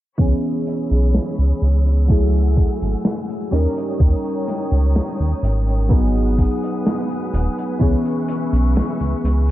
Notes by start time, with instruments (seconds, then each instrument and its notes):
0.18 analog synth bass C#2, synth keys E3 B3 C#4 G#4, string section G#4 C#5 B5 E6, kick, closed hi-hat
0.44 closed hi-hat
0.67 closed hi-hat
0.91 analog synth bass B1, closed hi-hat
1.14 snare, closed hi-hat
1.39 analog synth bass C#2, closed hi-hat
1.62 analog synth bass C#2, closed hi-hat
1.86 closed hi-hat
2.08 synth keys F#3 A3 E4 G#4, string section A3 F#5 G#5, kick, closed hi-hat
2.33 closed hi-hat
2.57 kick, closed hi-hat
2.82 analog synth bass G#1, closed hi-hat
3.05 snare, closed hi-hat
3.29 closed hi-hat
3.51 analog synth bass D#2, synth keys G3 C#4 D#4 A#4, string section C#5 G5 A#5 D#6, closed hi-hat
3.77 closed hi-hat
4.00 analog synth bass D#2, kick, closed hi-hat
4.25 closed hi-hat
4.48 snare, closed hi-hat
4.72 analog synth bass C#2, closed hi-hat
4.95 snare, closed hi-hat
5.19 analog synth bass D#2, closed hi-hat
5.43 analog synth bass G#1, closed hi-hat
5.67 closed hi-hat
5.89 synth keys F#3 B3 D#4 G#4, string section B4 F#5 G#5 D#6, kick, closed hi-hat
6.15 closed hi-hat
6.38 kick, closed hi-hat
6.63 closed hi-hat
6.86 snare, closed hi-hat
7.11 closed hi-hat
7.33 analog synth bass D#1, closed hi-hat
7.58 closed hi-hat
7.79 analog synth bass C#2, synth keys E3 B3 C#4 G#4, string section E5 C#6, kick, closed hi-hat
8.05 closed hi-hat
8.28 closed hi-hat
8.53 analog synth bass B1, closed hi-hat
8.76 snare, closed hi-hat
9.00 analog synth bass C#2, closed hi-hat
9.24 analog synth bass C#2, closed hi-hat